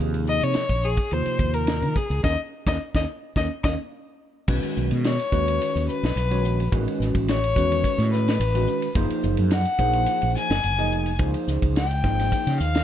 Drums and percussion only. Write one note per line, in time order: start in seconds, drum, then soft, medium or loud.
0.14 ride soft
0.27 hi-hat pedal medium
0.41 ride soft
0.54 snare medium
0.54 ride medium
0.69 kick medium
0.69 ride medium
0.83 hi-hat pedal medium
0.97 kick medium
0.97 ride medium
1.11 ride medium
1.26 ride soft
1.39 kick medium
1.39 hi-hat pedal medium
1.54 ride soft
1.67 snare loud
1.67 ride medium
1.82 ride medium
1.96 kick medium
1.96 hi-hat pedal medium
2.11 ride soft
2.24 kick medium
2.24 snare medium
2.67 kick medium
2.67 snare medium
2.95 kick medium
2.95 snare medium
3.36 kick medium
3.36 snare medium
3.64 kick medium
3.64 snare medium
4.48 kick loud
4.48 crash medium
4.63 ride medium
4.76 hi-hat pedal medium
4.91 ride medium
5.04 snare loud
5.04 hi-hat pedal medium
5.04 ride medium
5.19 ride medium
5.32 kick medium
5.32 hi-hat pedal medium
5.48 ride medium
5.62 hi-hat pedal medium
5.62 ride medium
5.77 ride medium
5.89 hi-hat pedal medium
6.04 snare medium
6.04 ride medium
6.17 hi-hat pedal medium
6.17 ride medium
6.31 ride medium
6.45 hi-hat pedal medium
6.60 ride medium
6.72 kick medium
6.72 hi-hat pedal medium
6.72 ride medium
6.88 ride medium
7.01 snare soft
7.01 hi-hat pedal medium
7.15 kick medium
7.15 ride medium
7.28 snare medium
7.28 hi-hat pedal medium
7.28 ride medium
7.44 ride medium
7.56 kick medium
7.56 hi-hat pedal medium
7.72 ride medium
7.84 kick medium
7.84 hi-hat pedal medium
7.84 ride medium
8.00 snare soft
8.00 ride medium
8.13 snare soft
8.13 hi-hat pedal medium
8.28 snare medium
8.28 ride medium
8.41 hi-hat pedal medium
8.41 ride medium
8.55 ride medium
8.67 hi-hat pedal medium
8.82 ride medium
8.95 kick medium
8.95 hi-hat pedal medium
8.95 ride medium
9.10 ride medium
9.23 hi-hat pedal medium
9.37 ride medium
9.51 snare loud
9.51 hi-hat pedal medium
9.51 ride medium
9.65 ride medium
9.78 kick medium
9.78 hi-hat pedal medium
9.93 ride medium
10.06 hi-hat pedal medium
10.06 ride medium
10.22 ride medium
10.36 snare soft
10.36 hi-hat pedal medium
10.50 snare loud
10.50 ride soft
10.63 hi-hat pedal medium
10.63 ride medium
10.79 ride medium
10.92 hi-hat pedal medium
11.06 ride medium
11.19 kick loud
11.19 hi-hat pedal medium
11.19 ride medium
11.34 ride medium
11.48 snare soft
11.48 hi-hat pedal medium
11.62 kick medium
11.62 ride medium
11.76 snare loud
11.76 hi-hat pedal medium
11.76 ride medium
11.91 ride medium
12.04 kick medium
12.04 snare soft
12.04 hi-hat pedal medium
12.19 snare soft
12.19 ride medium
12.32 kick medium
12.32 hi-hat pedal medium
12.32 ride medium
12.47 snare soft
12.47 ride medium
12.60 snare soft
12.60 hi-hat pedal medium
12.75 snare medium
12.75 ride medium